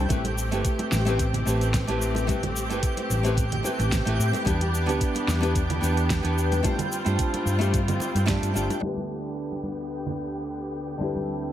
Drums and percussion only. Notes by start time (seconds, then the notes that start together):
0.10 kick, closed hi-hat, high conga, cabasa
0.24 closed hi-hat, high conga
0.38 cabasa
0.52 closed hi-hat, cabasa
0.65 kick, closed hi-hat, cabasa
0.79 closed hi-hat, muted conga
0.92 snare, high conga, cabasa
1.07 closed hi-hat, cabasa
1.19 kick, closed hi-hat, cabasa
1.33 closed hi-hat, low conga
1.47 cabasa
1.61 closed hi-hat, cabasa
1.74 kick, snare, closed hi-hat, cabasa
1.88 closed hi-hat
2.02 cabasa
2.15 closed hi-hat, muted conga, cabasa
2.28 kick, closed hi-hat, high conga, cabasa
2.43 closed hi-hat, high conga, low conga
2.56 cabasa
2.70 closed hi-hat, cabasa
2.83 kick, closed hi-hat, cabasa
2.97 closed hi-hat, muted conga
3.10 high conga, cabasa
3.25 closed hi-hat, cabasa
3.37 kick, closed hi-hat, cabasa
3.52 closed hi-hat, low conga
3.64 muted conga, cabasa
3.79 closed hi-hat, muted conga, cabasa
3.92 kick, snare, closed hi-hat, cabasa
4.07 closed hi-hat
4.20 cabasa
4.33 closed hi-hat, muted conga, cabasa
4.46 kick, closed hi-hat, high conga, cabasa
4.61 closed hi-hat, high conga
4.75 cabasa
4.89 closed hi-hat, cabasa
5.01 kick, closed hi-hat, cabasa
5.15 closed hi-hat, muted conga
5.28 snare, high conga, cabasa
5.43 closed hi-hat, cabasa
5.55 kick, closed hi-hat, cabasa
5.70 closed hi-hat, low conga
5.83 cabasa
5.97 closed hi-hat, cabasa
6.10 kick, snare, closed hi-hat, cabasa
6.25 closed hi-hat
6.38 cabasa
6.52 closed hi-hat, muted conga, cabasa
6.64 kick, closed hi-hat, high conga, cabasa
6.78 closed hi-hat, high conga, low conga, cabasa
6.92 cabasa
7.06 closed hi-hat, cabasa
7.19 kick, closed hi-hat, cabasa
7.34 closed hi-hat, muted conga
7.47 high conga, cabasa
7.61 closed hi-hat, cabasa
7.74 kick, closed hi-hat, cabasa
7.88 closed hi-hat, low conga, cabasa
8.00 muted conga, cabasa
8.16 closed hi-hat, muted conga, cabasa
8.28 kick, snare, closed hi-hat, high conga, cabasa
8.43 closed hi-hat, cabasa
8.56 cabasa
8.70 closed hi-hat, muted conga, cabasa
8.83 high conga, cabasa
8.97 high conga
9.11 cabasa
9.25 cabasa
9.38 cabasa
9.52 muted conga
9.63 high conga, cabasa
9.80 cabasa
9.93 cabasa
10.06 low conga
10.20 cabasa
10.34 cabasa
10.47 cabasa
10.74 cabasa
10.89 cabasa
11.00 high conga, cabasa
11.16 high conga
11.29 cabasa
11.44 cabasa